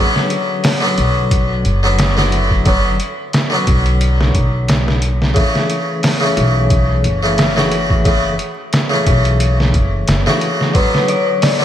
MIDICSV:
0, 0, Header, 1, 5, 480
1, 0, Start_track
1, 0, Key_signature, 2, "minor"
1, 0, Tempo, 674157
1, 1897, Time_signature, 4, 2, 24, 8
1, 8294, End_track
2, 0, Start_track
2, 0, Title_t, "Synth bell"
2, 0, Program_c, 0, 98
2, 7658, Note_on_c, 0, 71, 79
2, 7811, Control_c, 0, 64, 127
2, 7876, Note_off_c, 0, 71, 0
2, 7897, Note_on_c, 0, 73, 97
2, 8116, Note_off_c, 0, 73, 0
2, 8135, Note_on_c, 0, 74, 67
2, 8294, Note_off_c, 0, 74, 0
2, 8294, End_track
3, 0, Start_track
3, 0, Title_t, "Harpsichord"
3, 0, Program_c, 1, 6
3, 0, Note_on_c, 1, 50, 84
3, 0, Note_on_c, 1, 54, 81
3, 0, Note_on_c, 1, 59, 84
3, 5, Note_on_c, 1, 61, 97
3, 551, Note_off_c, 1, 50, 0
3, 557, Note_off_c, 1, 54, 0
3, 565, Note_off_c, 1, 59, 0
3, 572, Note_off_c, 1, 61, 0
3, 573, Note_on_c, 1, 50, 75
3, 587, Note_on_c, 1, 54, 73
3, 603, Note_on_c, 1, 59, 75
3, 616, Note_on_c, 1, 61, 84
3, 1269, Note_off_c, 1, 50, 0
3, 1276, Note_off_c, 1, 54, 0
3, 1284, Note_off_c, 1, 59, 0
3, 1291, Note_off_c, 1, 61, 0
3, 1304, Note_on_c, 1, 50, 73
3, 1311, Note_on_c, 1, 54, 69
3, 1319, Note_on_c, 1, 59, 68
3, 1325, Note_on_c, 1, 61, 82
3, 1515, Note_off_c, 1, 50, 0
3, 1518, Note_off_c, 1, 54, 0
3, 1522, Note_off_c, 1, 59, 0
3, 1526, Note_off_c, 1, 61, 0
3, 1544, Note_on_c, 1, 50, 78
3, 1550, Note_on_c, 1, 54, 69
3, 1557, Note_on_c, 1, 59, 74
3, 1563, Note_on_c, 1, 64, 87
3, 1868, Note_off_c, 1, 50, 0
3, 1871, Note_off_c, 1, 54, 0
3, 1875, Note_off_c, 1, 59, 0
3, 1878, Note_off_c, 1, 64, 0
3, 1889, Note_on_c, 1, 50, 86
3, 1897, Note_on_c, 1, 54, 77
3, 1904, Note_on_c, 1, 59, 75
3, 1911, Note_on_c, 1, 61, 96
3, 2089, Note_off_c, 1, 50, 0
3, 2093, Note_off_c, 1, 54, 0
3, 2096, Note_off_c, 1, 59, 0
3, 2100, Note_off_c, 1, 61, 0
3, 2492, Note_on_c, 1, 50, 76
3, 2507, Note_on_c, 1, 54, 71
3, 2521, Note_on_c, 1, 59, 73
3, 2534, Note_on_c, 1, 61, 91
3, 3782, Note_off_c, 1, 50, 0
3, 3790, Note_off_c, 1, 54, 0
3, 3797, Note_off_c, 1, 59, 0
3, 3802, Note_on_c, 1, 49, 90
3, 3804, Note_off_c, 1, 61, 0
3, 3817, Note_on_c, 1, 52, 79
3, 3831, Note_on_c, 1, 57, 83
3, 3845, Note_on_c, 1, 61, 104
3, 4390, Note_off_c, 1, 49, 0
3, 4397, Note_off_c, 1, 52, 0
3, 4405, Note_off_c, 1, 57, 0
3, 4412, Note_off_c, 1, 61, 0
3, 4415, Note_on_c, 1, 49, 86
3, 4430, Note_on_c, 1, 52, 75
3, 4444, Note_on_c, 1, 57, 72
3, 4458, Note_on_c, 1, 61, 92
3, 5110, Note_off_c, 1, 49, 0
3, 5118, Note_off_c, 1, 52, 0
3, 5125, Note_off_c, 1, 57, 0
3, 5132, Note_off_c, 1, 61, 0
3, 5145, Note_on_c, 1, 49, 76
3, 5153, Note_on_c, 1, 52, 71
3, 5159, Note_on_c, 1, 57, 67
3, 5166, Note_on_c, 1, 61, 80
3, 5355, Note_off_c, 1, 49, 0
3, 5359, Note_off_c, 1, 52, 0
3, 5362, Note_off_c, 1, 57, 0
3, 5366, Note_off_c, 1, 61, 0
3, 5383, Note_on_c, 1, 49, 77
3, 5389, Note_on_c, 1, 52, 69
3, 5397, Note_on_c, 1, 57, 79
3, 5405, Note_on_c, 1, 66, 82
3, 5708, Note_off_c, 1, 49, 0
3, 5711, Note_off_c, 1, 52, 0
3, 5715, Note_off_c, 1, 57, 0
3, 5719, Note_off_c, 1, 66, 0
3, 5730, Note_on_c, 1, 49, 83
3, 5737, Note_on_c, 1, 52, 78
3, 5742, Note_on_c, 1, 57, 77
3, 5750, Note_on_c, 1, 59, 98
3, 5929, Note_off_c, 1, 49, 0
3, 5933, Note_off_c, 1, 52, 0
3, 5935, Note_off_c, 1, 57, 0
3, 5939, Note_off_c, 1, 59, 0
3, 6334, Note_on_c, 1, 49, 80
3, 6346, Note_on_c, 1, 52, 71
3, 6362, Note_on_c, 1, 57, 72
3, 6376, Note_on_c, 1, 61, 92
3, 7275, Note_off_c, 1, 49, 0
3, 7281, Note_off_c, 1, 52, 0
3, 7289, Note_off_c, 1, 57, 0
3, 7296, Note_off_c, 1, 61, 0
3, 7307, Note_on_c, 1, 49, 73
3, 7314, Note_on_c, 1, 52, 71
3, 7321, Note_on_c, 1, 57, 68
3, 7329, Note_on_c, 1, 66, 84
3, 7630, Note_off_c, 1, 49, 0
3, 7633, Note_off_c, 1, 52, 0
3, 7637, Note_off_c, 1, 57, 0
3, 7641, Note_off_c, 1, 66, 0
3, 7643, Note_on_c, 1, 50, 95
3, 7657, Note_on_c, 1, 54, 82
3, 7672, Note_on_c, 1, 59, 83
3, 7687, Note_on_c, 1, 61, 100
3, 8231, Note_off_c, 1, 50, 0
3, 8237, Note_off_c, 1, 54, 0
3, 8245, Note_off_c, 1, 59, 0
3, 8253, Note_off_c, 1, 61, 0
3, 8254, Note_on_c, 1, 50, 84
3, 8269, Note_on_c, 1, 54, 78
3, 8294, Note_off_c, 1, 50, 0
3, 8294, Note_off_c, 1, 54, 0
3, 8294, End_track
4, 0, Start_track
4, 0, Title_t, "Upright bass"
4, 0, Program_c, 2, 32
4, 699, Note_on_c, 2, 35, 83
4, 1157, Note_off_c, 2, 35, 0
4, 1179, Note_on_c, 2, 30, 79
4, 2117, Note_off_c, 2, 30, 0
4, 2617, Note_on_c, 2, 35, 91
4, 3076, Note_off_c, 2, 35, 0
4, 3097, Note_on_c, 2, 35, 81
4, 3796, Note_off_c, 2, 35, 0
4, 4540, Note_on_c, 2, 35, 90
4, 4998, Note_off_c, 2, 35, 0
4, 5022, Note_on_c, 2, 30, 80
4, 5959, Note_off_c, 2, 30, 0
4, 6456, Note_on_c, 2, 35, 90
4, 6916, Note_off_c, 2, 35, 0
4, 6937, Note_on_c, 2, 30, 81
4, 7151, Note_off_c, 2, 30, 0
4, 7182, Note_on_c, 2, 30, 71
4, 7296, Note_off_c, 2, 30, 0
4, 8294, End_track
5, 0, Start_track
5, 0, Title_t, "Drums"
5, 114, Note_on_c, 9, 38, 42
5, 185, Note_off_c, 9, 38, 0
5, 215, Note_on_c, 9, 42, 63
5, 286, Note_off_c, 9, 42, 0
5, 454, Note_on_c, 9, 46, 76
5, 461, Note_on_c, 9, 38, 117
5, 525, Note_off_c, 9, 46, 0
5, 532, Note_off_c, 9, 38, 0
5, 695, Note_on_c, 9, 42, 68
5, 767, Note_off_c, 9, 42, 0
5, 935, Note_on_c, 9, 36, 106
5, 935, Note_on_c, 9, 42, 88
5, 1006, Note_off_c, 9, 36, 0
5, 1006, Note_off_c, 9, 42, 0
5, 1174, Note_on_c, 9, 42, 63
5, 1245, Note_off_c, 9, 42, 0
5, 1413, Note_on_c, 9, 42, 81
5, 1421, Note_on_c, 9, 38, 109
5, 1485, Note_off_c, 9, 42, 0
5, 1492, Note_off_c, 9, 38, 0
5, 1554, Note_on_c, 9, 38, 47
5, 1625, Note_off_c, 9, 38, 0
5, 1653, Note_on_c, 9, 42, 59
5, 1724, Note_off_c, 9, 42, 0
5, 1786, Note_on_c, 9, 36, 80
5, 1857, Note_off_c, 9, 36, 0
5, 1891, Note_on_c, 9, 42, 78
5, 1894, Note_on_c, 9, 36, 104
5, 1962, Note_off_c, 9, 42, 0
5, 1965, Note_off_c, 9, 36, 0
5, 2134, Note_on_c, 9, 42, 63
5, 2205, Note_off_c, 9, 42, 0
5, 2373, Note_on_c, 9, 42, 80
5, 2380, Note_on_c, 9, 38, 112
5, 2444, Note_off_c, 9, 42, 0
5, 2451, Note_off_c, 9, 38, 0
5, 2613, Note_on_c, 9, 42, 68
5, 2614, Note_on_c, 9, 36, 93
5, 2685, Note_off_c, 9, 42, 0
5, 2686, Note_off_c, 9, 36, 0
5, 2747, Note_on_c, 9, 42, 41
5, 2818, Note_off_c, 9, 42, 0
5, 2854, Note_on_c, 9, 42, 85
5, 2925, Note_off_c, 9, 42, 0
5, 2995, Note_on_c, 9, 38, 45
5, 3066, Note_off_c, 9, 38, 0
5, 3095, Note_on_c, 9, 36, 89
5, 3095, Note_on_c, 9, 42, 62
5, 3166, Note_off_c, 9, 36, 0
5, 3166, Note_off_c, 9, 42, 0
5, 3336, Note_on_c, 9, 42, 85
5, 3343, Note_on_c, 9, 38, 112
5, 3407, Note_off_c, 9, 42, 0
5, 3414, Note_off_c, 9, 38, 0
5, 3476, Note_on_c, 9, 38, 45
5, 3547, Note_off_c, 9, 38, 0
5, 3573, Note_on_c, 9, 42, 64
5, 3645, Note_off_c, 9, 42, 0
5, 3715, Note_on_c, 9, 38, 41
5, 3786, Note_off_c, 9, 38, 0
5, 3815, Note_on_c, 9, 42, 77
5, 3816, Note_on_c, 9, 36, 105
5, 3886, Note_off_c, 9, 42, 0
5, 3887, Note_off_c, 9, 36, 0
5, 3955, Note_on_c, 9, 38, 44
5, 4026, Note_off_c, 9, 38, 0
5, 4055, Note_on_c, 9, 42, 60
5, 4127, Note_off_c, 9, 42, 0
5, 4294, Note_on_c, 9, 46, 77
5, 4301, Note_on_c, 9, 38, 115
5, 4365, Note_off_c, 9, 46, 0
5, 4372, Note_off_c, 9, 38, 0
5, 4536, Note_on_c, 9, 42, 71
5, 4607, Note_off_c, 9, 42, 0
5, 4773, Note_on_c, 9, 42, 81
5, 4775, Note_on_c, 9, 36, 106
5, 4844, Note_off_c, 9, 42, 0
5, 4846, Note_off_c, 9, 36, 0
5, 5014, Note_on_c, 9, 42, 62
5, 5085, Note_off_c, 9, 42, 0
5, 5254, Note_on_c, 9, 42, 79
5, 5261, Note_on_c, 9, 38, 113
5, 5325, Note_off_c, 9, 42, 0
5, 5332, Note_off_c, 9, 38, 0
5, 5394, Note_on_c, 9, 38, 52
5, 5465, Note_off_c, 9, 38, 0
5, 5493, Note_on_c, 9, 42, 62
5, 5564, Note_off_c, 9, 42, 0
5, 5627, Note_on_c, 9, 36, 89
5, 5698, Note_off_c, 9, 36, 0
5, 5734, Note_on_c, 9, 36, 102
5, 5734, Note_on_c, 9, 42, 82
5, 5805, Note_off_c, 9, 42, 0
5, 5806, Note_off_c, 9, 36, 0
5, 5974, Note_on_c, 9, 42, 62
5, 6046, Note_off_c, 9, 42, 0
5, 6213, Note_on_c, 9, 42, 89
5, 6220, Note_on_c, 9, 38, 113
5, 6284, Note_off_c, 9, 42, 0
5, 6292, Note_off_c, 9, 38, 0
5, 6454, Note_on_c, 9, 36, 96
5, 6454, Note_on_c, 9, 42, 66
5, 6526, Note_off_c, 9, 36, 0
5, 6526, Note_off_c, 9, 42, 0
5, 6587, Note_on_c, 9, 42, 42
5, 6658, Note_off_c, 9, 42, 0
5, 6694, Note_on_c, 9, 42, 85
5, 6765, Note_off_c, 9, 42, 0
5, 6836, Note_on_c, 9, 38, 41
5, 6907, Note_off_c, 9, 38, 0
5, 6934, Note_on_c, 9, 36, 87
5, 6936, Note_on_c, 9, 42, 63
5, 7006, Note_off_c, 9, 36, 0
5, 7007, Note_off_c, 9, 42, 0
5, 7174, Note_on_c, 9, 42, 83
5, 7181, Note_on_c, 9, 38, 110
5, 7245, Note_off_c, 9, 42, 0
5, 7252, Note_off_c, 9, 38, 0
5, 7313, Note_on_c, 9, 38, 46
5, 7384, Note_off_c, 9, 38, 0
5, 7414, Note_on_c, 9, 42, 60
5, 7486, Note_off_c, 9, 42, 0
5, 7554, Note_on_c, 9, 38, 41
5, 7625, Note_off_c, 9, 38, 0
5, 7653, Note_on_c, 9, 42, 78
5, 7654, Note_on_c, 9, 36, 107
5, 7724, Note_off_c, 9, 42, 0
5, 7725, Note_off_c, 9, 36, 0
5, 7793, Note_on_c, 9, 38, 42
5, 7865, Note_off_c, 9, 38, 0
5, 7892, Note_on_c, 9, 42, 67
5, 7963, Note_off_c, 9, 42, 0
5, 8132, Note_on_c, 9, 46, 82
5, 8139, Note_on_c, 9, 38, 113
5, 8203, Note_off_c, 9, 46, 0
5, 8211, Note_off_c, 9, 38, 0
5, 8294, End_track
0, 0, End_of_file